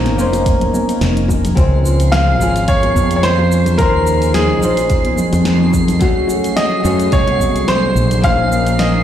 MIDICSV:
0, 0, Header, 1, 7, 480
1, 0, Start_track
1, 0, Tempo, 555556
1, 1354, Time_signature, 4, 2, 24, 8
1, 7806, End_track
2, 0, Start_track
2, 0, Title_t, "Synth texture"
2, 0, Program_c, 0, 99
2, 1352, Note_on_c, 0, 96, 89
2, 7806, Note_off_c, 0, 96, 0
2, 7806, End_track
3, 0, Start_track
3, 0, Title_t, "Grand piano"
3, 0, Program_c, 1, 0
3, 0, Note_on_c, 1, 70, 86
3, 834, Note_off_c, 1, 70, 0
3, 1830, Note_on_c, 1, 77, 103
3, 2318, Note_on_c, 1, 73, 101
3, 2326, Note_off_c, 1, 77, 0
3, 2721, Note_off_c, 1, 73, 0
3, 2734, Note_on_c, 1, 73, 76
3, 2791, Note_off_c, 1, 73, 0
3, 2793, Note_on_c, 1, 72, 97
3, 3240, Note_off_c, 1, 72, 0
3, 3265, Note_on_c, 1, 70, 101
3, 3716, Note_off_c, 1, 70, 0
3, 3751, Note_on_c, 1, 68, 78
3, 4438, Note_off_c, 1, 68, 0
3, 5672, Note_on_c, 1, 75, 91
3, 6158, Note_on_c, 1, 73, 95
3, 6167, Note_off_c, 1, 75, 0
3, 6637, Note_on_c, 1, 72, 93
3, 6651, Note_off_c, 1, 73, 0
3, 7120, Note_on_c, 1, 77, 114
3, 7130, Note_off_c, 1, 72, 0
3, 7596, Note_on_c, 1, 75, 84
3, 7611, Note_off_c, 1, 77, 0
3, 7806, Note_off_c, 1, 75, 0
3, 7806, End_track
4, 0, Start_track
4, 0, Title_t, "Analog synth pad"
4, 0, Program_c, 2, 89
4, 0, Note_on_c, 2, 58, 74
4, 0, Note_on_c, 2, 63, 89
4, 0, Note_on_c, 2, 70, 76
4, 0, Note_on_c, 2, 80, 68
4, 1321, Note_off_c, 2, 80, 0
4, 1333, Note_off_c, 2, 58, 0
4, 1333, Note_off_c, 2, 63, 0
4, 1349, Note_on_c, 2, 65, 85
4, 1351, Note_on_c, 2, 68, 76
4, 1353, Note_on_c, 2, 53, 75
4, 3252, Note_off_c, 2, 65, 0
4, 3268, Note_on_c, 2, 63, 88
4, 5159, Note_off_c, 2, 53, 0
4, 5160, Note_off_c, 2, 70, 0
4, 5172, Note_off_c, 2, 63, 0
4, 5187, Note_on_c, 2, 57, 73
4, 5190, Note_on_c, 2, 66, 84
4, 5191, Note_on_c, 2, 54, 72
4, 6854, Note_off_c, 2, 57, 0
4, 6855, Note_off_c, 2, 66, 0
4, 6856, Note_off_c, 2, 54, 0
4, 6863, Note_on_c, 2, 63, 90
4, 6864, Note_on_c, 2, 58, 76
4, 6864, Note_on_c, 2, 70, 69
4, 7806, Note_off_c, 2, 58, 0
4, 7806, Note_off_c, 2, 63, 0
4, 7806, Note_off_c, 2, 68, 0
4, 7806, Note_off_c, 2, 70, 0
4, 7806, End_track
5, 0, Start_track
5, 0, Title_t, "Nylon-string guitar"
5, 0, Program_c, 3, 24
5, 0, Note_on_c, 3, 58, 87
5, 0, Note_on_c, 3, 61, 81
5, 0, Note_on_c, 3, 63, 82
5, 0, Note_on_c, 3, 68, 89
5, 0, Note_on_c, 3, 72, 101
5, 121, Note_off_c, 3, 58, 0
5, 125, Note_off_c, 3, 61, 0
5, 130, Note_off_c, 3, 63, 0
5, 133, Note_off_c, 3, 68, 0
5, 137, Note_off_c, 3, 72, 0
5, 142, Note_on_c, 3, 58, 69
5, 151, Note_on_c, 3, 61, 64
5, 157, Note_on_c, 3, 63, 66
5, 168, Note_on_c, 3, 68, 65
5, 176, Note_on_c, 3, 72, 81
5, 1323, Note_off_c, 3, 58, 0
5, 1327, Note_off_c, 3, 61, 0
5, 1330, Note_off_c, 3, 63, 0
5, 1335, Note_off_c, 3, 68, 0
5, 1339, Note_off_c, 3, 72, 0
5, 1339, Note_on_c, 3, 56, 91
5, 1349, Note_on_c, 3, 60, 84
5, 1358, Note_on_c, 3, 61, 85
5, 1364, Note_on_c, 3, 65, 79
5, 1374, Note_on_c, 3, 72, 97
5, 2041, Note_off_c, 3, 56, 0
5, 2046, Note_off_c, 3, 60, 0
5, 2050, Note_off_c, 3, 61, 0
5, 2053, Note_off_c, 3, 65, 0
5, 2058, Note_off_c, 3, 72, 0
5, 2061, Note_on_c, 3, 56, 68
5, 2078, Note_on_c, 3, 61, 66
5, 2086, Note_on_c, 3, 65, 67
5, 2093, Note_on_c, 3, 68, 78
5, 3242, Note_off_c, 3, 56, 0
5, 3250, Note_off_c, 3, 61, 0
5, 3255, Note_off_c, 3, 65, 0
5, 3258, Note_off_c, 3, 68, 0
5, 3260, Note_on_c, 3, 56, 95
5, 3265, Note_on_c, 3, 61, 82
5, 3274, Note_on_c, 3, 63, 82
5, 3284, Note_on_c, 3, 65, 78
5, 3293, Note_on_c, 3, 72, 101
5, 3961, Note_off_c, 3, 56, 0
5, 3964, Note_off_c, 3, 61, 0
5, 3969, Note_off_c, 3, 63, 0
5, 3973, Note_off_c, 3, 65, 0
5, 3978, Note_off_c, 3, 72, 0
5, 3982, Note_on_c, 3, 56, 71
5, 3988, Note_on_c, 3, 61, 67
5, 3997, Note_on_c, 3, 63, 66
5, 4006, Note_on_c, 3, 65, 71
5, 4015, Note_on_c, 3, 72, 74
5, 5162, Note_off_c, 3, 56, 0
5, 5165, Note_off_c, 3, 61, 0
5, 5170, Note_off_c, 3, 63, 0
5, 5174, Note_off_c, 3, 65, 0
5, 5176, Note_on_c, 3, 57, 93
5, 5179, Note_off_c, 3, 72, 0
5, 5186, Note_on_c, 3, 61, 85
5, 5193, Note_on_c, 3, 66, 84
5, 5202, Note_on_c, 3, 68, 86
5, 5210, Note_on_c, 3, 73, 95
5, 5880, Note_off_c, 3, 57, 0
5, 5884, Note_off_c, 3, 61, 0
5, 5888, Note_off_c, 3, 66, 0
5, 5892, Note_off_c, 3, 68, 0
5, 5896, Note_off_c, 3, 73, 0
5, 5898, Note_on_c, 3, 57, 75
5, 5905, Note_on_c, 3, 61, 67
5, 5914, Note_on_c, 3, 66, 66
5, 5922, Note_on_c, 3, 68, 69
5, 5929, Note_on_c, 3, 73, 82
5, 6853, Note_off_c, 3, 57, 0
5, 6857, Note_off_c, 3, 61, 0
5, 6861, Note_off_c, 3, 66, 0
5, 6865, Note_off_c, 3, 68, 0
5, 6869, Note_off_c, 3, 73, 0
5, 7097, Note_on_c, 3, 58, 96
5, 7105, Note_on_c, 3, 61, 82
5, 7115, Note_on_c, 3, 63, 84
5, 7120, Note_on_c, 3, 68, 86
5, 7131, Note_on_c, 3, 72, 102
5, 7800, Note_off_c, 3, 58, 0
5, 7804, Note_off_c, 3, 61, 0
5, 7806, Note_off_c, 3, 63, 0
5, 7806, Note_off_c, 3, 68, 0
5, 7806, Note_off_c, 3, 72, 0
5, 7806, End_track
6, 0, Start_track
6, 0, Title_t, "Fretless electric bass"
6, 0, Program_c, 4, 35
6, 0, Note_on_c, 4, 34, 89
6, 153, Note_off_c, 4, 34, 0
6, 153, Note_on_c, 4, 29, 98
6, 601, Note_off_c, 4, 29, 0
6, 872, Note_on_c, 4, 29, 79
6, 1320, Note_off_c, 4, 29, 0
6, 1359, Note_on_c, 4, 37, 89
6, 2074, Note_off_c, 4, 37, 0
6, 2074, Note_on_c, 4, 32, 95
6, 2521, Note_off_c, 4, 32, 0
6, 2556, Note_on_c, 4, 41, 96
6, 3275, Note_off_c, 4, 41, 0
6, 3275, Note_on_c, 4, 39, 101
6, 3991, Note_off_c, 4, 39, 0
6, 3991, Note_on_c, 4, 34, 92
6, 4440, Note_off_c, 4, 34, 0
6, 4604, Note_on_c, 4, 41, 98
6, 5160, Note_off_c, 4, 41, 0
6, 5915, Note_on_c, 4, 42, 97
6, 6113, Note_off_c, 4, 42, 0
6, 6155, Note_on_c, 4, 36, 85
6, 6841, Note_off_c, 4, 36, 0
6, 6871, Note_on_c, 4, 34, 87
6, 7806, Note_off_c, 4, 34, 0
6, 7806, End_track
7, 0, Start_track
7, 0, Title_t, "Drums"
7, 45, Note_on_c, 9, 63, 77
7, 51, Note_on_c, 9, 38, 31
7, 51, Note_on_c, 9, 42, 31
7, 131, Note_off_c, 9, 63, 0
7, 137, Note_off_c, 9, 38, 0
7, 137, Note_off_c, 9, 42, 0
7, 164, Note_on_c, 9, 69, 77
7, 250, Note_off_c, 9, 69, 0
7, 282, Note_on_c, 9, 60, 81
7, 288, Note_on_c, 9, 42, 46
7, 296, Note_on_c, 9, 69, 43
7, 369, Note_off_c, 9, 60, 0
7, 375, Note_off_c, 9, 42, 0
7, 383, Note_off_c, 9, 69, 0
7, 397, Note_on_c, 9, 36, 114
7, 398, Note_on_c, 9, 42, 57
7, 407, Note_on_c, 9, 69, 34
7, 484, Note_off_c, 9, 36, 0
7, 485, Note_off_c, 9, 42, 0
7, 493, Note_off_c, 9, 69, 0
7, 521, Note_on_c, 9, 64, 74
7, 526, Note_on_c, 9, 63, 56
7, 530, Note_on_c, 9, 42, 32
7, 608, Note_off_c, 9, 64, 0
7, 612, Note_off_c, 9, 63, 0
7, 617, Note_off_c, 9, 42, 0
7, 632, Note_on_c, 9, 63, 79
7, 633, Note_on_c, 9, 64, 75
7, 636, Note_on_c, 9, 60, 48
7, 644, Note_on_c, 9, 69, 75
7, 718, Note_off_c, 9, 63, 0
7, 720, Note_off_c, 9, 64, 0
7, 722, Note_off_c, 9, 60, 0
7, 731, Note_off_c, 9, 69, 0
7, 769, Note_on_c, 9, 42, 43
7, 777, Note_on_c, 9, 69, 41
7, 855, Note_off_c, 9, 42, 0
7, 863, Note_off_c, 9, 69, 0
7, 875, Note_on_c, 9, 38, 108
7, 875, Note_on_c, 9, 42, 59
7, 884, Note_on_c, 9, 69, 32
7, 962, Note_off_c, 9, 38, 0
7, 962, Note_off_c, 9, 42, 0
7, 970, Note_off_c, 9, 69, 0
7, 1007, Note_on_c, 9, 63, 60
7, 1010, Note_on_c, 9, 42, 34
7, 1094, Note_off_c, 9, 63, 0
7, 1096, Note_off_c, 9, 42, 0
7, 1109, Note_on_c, 9, 60, 89
7, 1117, Note_on_c, 9, 36, 64
7, 1126, Note_on_c, 9, 69, 72
7, 1195, Note_off_c, 9, 60, 0
7, 1203, Note_off_c, 9, 36, 0
7, 1212, Note_off_c, 9, 69, 0
7, 1248, Note_on_c, 9, 64, 96
7, 1250, Note_on_c, 9, 42, 50
7, 1258, Note_on_c, 9, 69, 43
7, 1334, Note_off_c, 9, 64, 0
7, 1337, Note_off_c, 9, 42, 0
7, 1345, Note_off_c, 9, 69, 0
7, 1357, Note_on_c, 9, 36, 119
7, 1358, Note_on_c, 9, 42, 57
7, 1366, Note_on_c, 9, 69, 32
7, 1444, Note_off_c, 9, 36, 0
7, 1444, Note_off_c, 9, 42, 0
7, 1452, Note_off_c, 9, 69, 0
7, 1594, Note_on_c, 9, 60, 51
7, 1604, Note_on_c, 9, 69, 78
7, 1680, Note_off_c, 9, 60, 0
7, 1690, Note_off_c, 9, 69, 0
7, 1726, Note_on_c, 9, 42, 45
7, 1734, Note_on_c, 9, 69, 44
7, 1813, Note_off_c, 9, 42, 0
7, 1821, Note_off_c, 9, 69, 0
7, 1835, Note_on_c, 9, 38, 119
7, 1835, Note_on_c, 9, 42, 59
7, 1843, Note_on_c, 9, 69, 36
7, 1921, Note_off_c, 9, 38, 0
7, 1921, Note_off_c, 9, 42, 0
7, 1929, Note_off_c, 9, 69, 0
7, 2075, Note_on_c, 9, 60, 82
7, 2083, Note_on_c, 9, 69, 81
7, 2162, Note_off_c, 9, 60, 0
7, 2170, Note_off_c, 9, 69, 0
7, 2209, Note_on_c, 9, 42, 46
7, 2217, Note_on_c, 9, 69, 46
7, 2295, Note_off_c, 9, 42, 0
7, 2304, Note_off_c, 9, 69, 0
7, 2314, Note_on_c, 9, 42, 64
7, 2317, Note_on_c, 9, 36, 118
7, 2322, Note_on_c, 9, 69, 37
7, 2401, Note_off_c, 9, 42, 0
7, 2403, Note_off_c, 9, 36, 0
7, 2409, Note_off_c, 9, 69, 0
7, 2441, Note_on_c, 9, 63, 59
7, 2446, Note_on_c, 9, 42, 32
7, 2448, Note_on_c, 9, 60, 53
7, 2527, Note_off_c, 9, 63, 0
7, 2532, Note_off_c, 9, 42, 0
7, 2534, Note_off_c, 9, 60, 0
7, 2544, Note_on_c, 9, 63, 93
7, 2555, Note_on_c, 9, 64, 86
7, 2556, Note_on_c, 9, 36, 61
7, 2562, Note_on_c, 9, 69, 85
7, 2631, Note_off_c, 9, 63, 0
7, 2642, Note_off_c, 9, 64, 0
7, 2643, Note_off_c, 9, 36, 0
7, 2649, Note_off_c, 9, 69, 0
7, 2685, Note_on_c, 9, 42, 45
7, 2693, Note_on_c, 9, 69, 42
7, 2771, Note_off_c, 9, 42, 0
7, 2779, Note_off_c, 9, 69, 0
7, 2792, Note_on_c, 9, 38, 104
7, 2792, Note_on_c, 9, 42, 58
7, 2800, Note_on_c, 9, 69, 35
7, 2879, Note_off_c, 9, 38, 0
7, 2879, Note_off_c, 9, 42, 0
7, 2887, Note_off_c, 9, 69, 0
7, 2924, Note_on_c, 9, 63, 59
7, 2928, Note_on_c, 9, 60, 86
7, 3011, Note_off_c, 9, 63, 0
7, 3014, Note_off_c, 9, 60, 0
7, 3041, Note_on_c, 9, 69, 83
7, 3127, Note_off_c, 9, 69, 0
7, 3161, Note_on_c, 9, 64, 96
7, 3164, Note_on_c, 9, 42, 45
7, 3173, Note_on_c, 9, 69, 48
7, 3247, Note_off_c, 9, 64, 0
7, 3251, Note_off_c, 9, 42, 0
7, 3259, Note_off_c, 9, 69, 0
7, 3265, Note_on_c, 9, 60, 45
7, 3271, Note_on_c, 9, 42, 55
7, 3275, Note_on_c, 9, 36, 121
7, 3279, Note_on_c, 9, 69, 35
7, 3351, Note_off_c, 9, 60, 0
7, 3357, Note_off_c, 9, 42, 0
7, 3361, Note_off_c, 9, 36, 0
7, 3366, Note_off_c, 9, 69, 0
7, 3516, Note_on_c, 9, 69, 81
7, 3602, Note_off_c, 9, 69, 0
7, 3644, Note_on_c, 9, 42, 45
7, 3652, Note_on_c, 9, 69, 43
7, 3731, Note_off_c, 9, 42, 0
7, 3739, Note_off_c, 9, 69, 0
7, 3750, Note_on_c, 9, 60, 89
7, 3752, Note_on_c, 9, 38, 110
7, 3752, Note_on_c, 9, 42, 59
7, 3760, Note_on_c, 9, 69, 37
7, 3836, Note_off_c, 9, 60, 0
7, 3839, Note_off_c, 9, 38, 0
7, 3839, Note_off_c, 9, 42, 0
7, 3847, Note_off_c, 9, 69, 0
7, 3998, Note_on_c, 9, 69, 82
7, 4084, Note_off_c, 9, 69, 0
7, 4117, Note_on_c, 9, 60, 55
7, 4123, Note_on_c, 9, 42, 46
7, 4131, Note_on_c, 9, 69, 48
7, 4203, Note_off_c, 9, 60, 0
7, 4209, Note_off_c, 9, 42, 0
7, 4218, Note_off_c, 9, 69, 0
7, 4230, Note_on_c, 9, 42, 57
7, 4234, Note_on_c, 9, 36, 120
7, 4239, Note_on_c, 9, 69, 34
7, 4317, Note_off_c, 9, 42, 0
7, 4320, Note_off_c, 9, 36, 0
7, 4325, Note_off_c, 9, 69, 0
7, 4359, Note_on_c, 9, 63, 64
7, 4360, Note_on_c, 9, 42, 34
7, 4446, Note_off_c, 9, 42, 0
7, 4446, Note_off_c, 9, 63, 0
7, 4462, Note_on_c, 9, 64, 88
7, 4464, Note_on_c, 9, 63, 87
7, 4475, Note_on_c, 9, 69, 84
7, 4549, Note_off_c, 9, 64, 0
7, 4551, Note_off_c, 9, 63, 0
7, 4561, Note_off_c, 9, 69, 0
7, 4599, Note_on_c, 9, 60, 84
7, 4602, Note_on_c, 9, 42, 41
7, 4610, Note_on_c, 9, 69, 42
7, 4686, Note_off_c, 9, 60, 0
7, 4688, Note_off_c, 9, 42, 0
7, 4697, Note_off_c, 9, 69, 0
7, 4711, Note_on_c, 9, 38, 107
7, 4711, Note_on_c, 9, 42, 55
7, 4719, Note_on_c, 9, 69, 35
7, 4798, Note_off_c, 9, 38, 0
7, 4798, Note_off_c, 9, 42, 0
7, 4806, Note_off_c, 9, 69, 0
7, 4841, Note_on_c, 9, 63, 69
7, 4928, Note_off_c, 9, 63, 0
7, 4948, Note_on_c, 9, 60, 60
7, 4954, Note_on_c, 9, 36, 66
7, 4956, Note_on_c, 9, 69, 82
7, 5034, Note_off_c, 9, 60, 0
7, 5040, Note_off_c, 9, 36, 0
7, 5043, Note_off_c, 9, 69, 0
7, 5077, Note_on_c, 9, 64, 92
7, 5083, Note_on_c, 9, 42, 45
7, 5091, Note_on_c, 9, 69, 46
7, 5163, Note_off_c, 9, 64, 0
7, 5169, Note_off_c, 9, 42, 0
7, 5178, Note_off_c, 9, 69, 0
7, 5189, Note_on_c, 9, 42, 56
7, 5193, Note_on_c, 9, 36, 117
7, 5198, Note_on_c, 9, 69, 35
7, 5276, Note_off_c, 9, 42, 0
7, 5279, Note_off_c, 9, 36, 0
7, 5284, Note_off_c, 9, 69, 0
7, 5424, Note_on_c, 9, 60, 79
7, 5440, Note_on_c, 9, 69, 83
7, 5511, Note_off_c, 9, 60, 0
7, 5526, Note_off_c, 9, 69, 0
7, 5567, Note_on_c, 9, 42, 42
7, 5575, Note_on_c, 9, 69, 43
7, 5653, Note_off_c, 9, 42, 0
7, 5661, Note_off_c, 9, 69, 0
7, 5673, Note_on_c, 9, 38, 109
7, 5673, Note_on_c, 9, 42, 60
7, 5682, Note_on_c, 9, 69, 39
7, 5760, Note_off_c, 9, 38, 0
7, 5760, Note_off_c, 9, 42, 0
7, 5768, Note_off_c, 9, 69, 0
7, 5806, Note_on_c, 9, 60, 46
7, 5892, Note_off_c, 9, 60, 0
7, 5919, Note_on_c, 9, 69, 88
7, 6005, Note_off_c, 9, 69, 0
7, 6044, Note_on_c, 9, 42, 42
7, 6052, Note_on_c, 9, 69, 49
7, 6130, Note_off_c, 9, 42, 0
7, 6138, Note_off_c, 9, 69, 0
7, 6152, Note_on_c, 9, 42, 58
7, 6155, Note_on_c, 9, 36, 127
7, 6160, Note_on_c, 9, 69, 35
7, 6239, Note_off_c, 9, 42, 0
7, 6241, Note_off_c, 9, 36, 0
7, 6247, Note_off_c, 9, 69, 0
7, 6283, Note_on_c, 9, 60, 73
7, 6283, Note_on_c, 9, 63, 64
7, 6286, Note_on_c, 9, 42, 31
7, 6369, Note_off_c, 9, 60, 0
7, 6370, Note_off_c, 9, 63, 0
7, 6372, Note_off_c, 9, 42, 0
7, 6390, Note_on_c, 9, 63, 86
7, 6390, Note_on_c, 9, 64, 72
7, 6394, Note_on_c, 9, 36, 62
7, 6404, Note_on_c, 9, 69, 83
7, 6477, Note_off_c, 9, 63, 0
7, 6477, Note_off_c, 9, 64, 0
7, 6481, Note_off_c, 9, 36, 0
7, 6490, Note_off_c, 9, 69, 0
7, 6529, Note_on_c, 9, 42, 40
7, 6537, Note_on_c, 9, 69, 41
7, 6615, Note_off_c, 9, 42, 0
7, 6623, Note_off_c, 9, 69, 0
7, 6634, Note_on_c, 9, 60, 47
7, 6635, Note_on_c, 9, 38, 106
7, 6635, Note_on_c, 9, 42, 54
7, 6643, Note_on_c, 9, 69, 36
7, 6721, Note_off_c, 9, 38, 0
7, 6721, Note_off_c, 9, 42, 0
7, 6721, Note_off_c, 9, 60, 0
7, 6730, Note_off_c, 9, 69, 0
7, 6764, Note_on_c, 9, 63, 62
7, 6850, Note_off_c, 9, 63, 0
7, 6882, Note_on_c, 9, 69, 87
7, 6968, Note_off_c, 9, 69, 0
7, 7005, Note_on_c, 9, 64, 89
7, 7007, Note_on_c, 9, 42, 42
7, 7016, Note_on_c, 9, 69, 47
7, 7091, Note_off_c, 9, 64, 0
7, 7094, Note_off_c, 9, 42, 0
7, 7102, Note_off_c, 9, 69, 0
7, 7111, Note_on_c, 9, 60, 66
7, 7115, Note_on_c, 9, 36, 118
7, 7116, Note_on_c, 9, 42, 51
7, 7124, Note_on_c, 9, 69, 33
7, 7197, Note_off_c, 9, 60, 0
7, 7202, Note_off_c, 9, 36, 0
7, 7203, Note_off_c, 9, 42, 0
7, 7211, Note_off_c, 9, 69, 0
7, 7363, Note_on_c, 9, 69, 78
7, 7450, Note_off_c, 9, 69, 0
7, 7479, Note_on_c, 9, 60, 53
7, 7487, Note_on_c, 9, 42, 40
7, 7495, Note_on_c, 9, 69, 45
7, 7566, Note_off_c, 9, 60, 0
7, 7573, Note_off_c, 9, 42, 0
7, 7581, Note_off_c, 9, 69, 0
7, 7596, Note_on_c, 9, 38, 109
7, 7596, Note_on_c, 9, 42, 60
7, 7604, Note_on_c, 9, 69, 38
7, 7682, Note_off_c, 9, 38, 0
7, 7682, Note_off_c, 9, 42, 0
7, 7690, Note_off_c, 9, 69, 0
7, 7806, End_track
0, 0, End_of_file